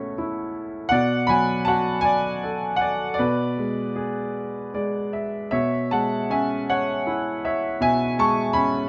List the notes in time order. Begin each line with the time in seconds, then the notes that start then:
Already playing: B2 A3 C#4 A4 C#5 E5
0.18 E4
0.89 B2 D5 F#5
1.27 F#3 G#5 B5
1.65 F#4 F#5 A5
2.01 D5 G#5
2.43 A4
2.76 F#5
2.81 D5
3.14 D5
3.19 B2 B4
3.58 G#3
3.96 G#4
4.74 G#3 D5
5.13 E5
5.51 B2 C#5 E5
5.91 G#3 F#5 A5
6.30 C#4 E5 G#5
6.70 C#5 F#5
7.07 E4
7.45 C#5 E5
7.81 B2 E5 G#5
8.18 G#3 A5 C#6
8.53 C#4 G#5 B5